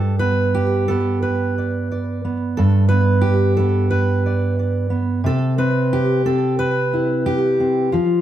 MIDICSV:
0, 0, Header, 1, 2, 480
1, 0, Start_track
1, 0, Key_signature, 1, "major"
1, 0, Tempo, 684151
1, 1338, Tempo, 668896
1, 1817, Time_signature, 4, 2, 24, 8
1, 5864, End_track
2, 0, Start_track
2, 0, Title_t, "Steel-string acoustic guitar"
2, 0, Program_c, 0, 25
2, 0, Note_on_c, 0, 43, 70
2, 0, Note_on_c, 0, 69, 85
2, 133, Note_off_c, 0, 69, 0
2, 135, Note_on_c, 0, 71, 89
2, 146, Note_on_c, 0, 59, 54
2, 382, Note_on_c, 0, 67, 91
2, 615, Note_off_c, 0, 71, 0
2, 618, Note_on_c, 0, 69, 84
2, 625, Note_off_c, 0, 59, 0
2, 628, Note_on_c, 0, 59, 52
2, 856, Note_off_c, 0, 69, 0
2, 859, Note_on_c, 0, 71, 77
2, 1101, Note_off_c, 0, 67, 0
2, 1110, Note_on_c, 0, 74, 42
2, 1335, Note_off_c, 0, 74, 0
2, 1344, Note_on_c, 0, 74, 46
2, 1578, Note_off_c, 0, 59, 0
2, 1578, Note_off_c, 0, 71, 0
2, 1581, Note_on_c, 0, 59, 53
2, 1792, Note_off_c, 0, 74, 0
2, 1815, Note_on_c, 0, 69, 90
2, 1816, Note_off_c, 0, 43, 0
2, 1824, Note_on_c, 0, 43, 80
2, 1836, Note_off_c, 0, 59, 0
2, 2037, Note_off_c, 0, 69, 0
2, 2040, Note_on_c, 0, 71, 96
2, 2060, Note_on_c, 0, 59, 57
2, 2276, Note_on_c, 0, 67, 93
2, 2526, Note_off_c, 0, 71, 0
2, 2529, Note_on_c, 0, 69, 89
2, 2543, Note_off_c, 0, 59, 0
2, 2546, Note_on_c, 0, 59, 51
2, 2769, Note_off_c, 0, 69, 0
2, 2771, Note_on_c, 0, 71, 85
2, 3012, Note_off_c, 0, 67, 0
2, 3026, Note_on_c, 0, 74, 44
2, 3255, Note_off_c, 0, 74, 0
2, 3264, Note_on_c, 0, 74, 43
2, 3477, Note_off_c, 0, 59, 0
2, 3486, Note_on_c, 0, 59, 61
2, 3492, Note_off_c, 0, 71, 0
2, 3700, Note_off_c, 0, 59, 0
2, 3708, Note_off_c, 0, 74, 0
2, 3729, Note_on_c, 0, 48, 80
2, 3738, Note_off_c, 0, 43, 0
2, 3746, Note_on_c, 0, 69, 93
2, 3973, Note_off_c, 0, 69, 0
2, 3973, Note_on_c, 0, 60, 65
2, 3976, Note_on_c, 0, 71, 97
2, 4223, Note_on_c, 0, 67, 100
2, 4449, Note_off_c, 0, 60, 0
2, 4456, Note_off_c, 0, 71, 0
2, 4458, Note_on_c, 0, 60, 52
2, 4460, Note_on_c, 0, 69, 93
2, 4694, Note_off_c, 0, 69, 0
2, 4697, Note_on_c, 0, 71, 104
2, 4940, Note_off_c, 0, 67, 0
2, 4944, Note_on_c, 0, 64, 46
2, 5179, Note_on_c, 0, 67, 99
2, 5414, Note_off_c, 0, 60, 0
2, 5423, Note_on_c, 0, 60, 53
2, 5631, Note_off_c, 0, 60, 0
2, 5632, Note_off_c, 0, 64, 0
2, 5654, Note_off_c, 0, 48, 0
2, 5655, Note_on_c, 0, 65, 73
2, 5658, Note_off_c, 0, 71, 0
2, 5659, Note_off_c, 0, 67, 0
2, 5664, Note_on_c, 0, 53, 69
2, 5864, Note_off_c, 0, 53, 0
2, 5864, Note_off_c, 0, 65, 0
2, 5864, End_track
0, 0, End_of_file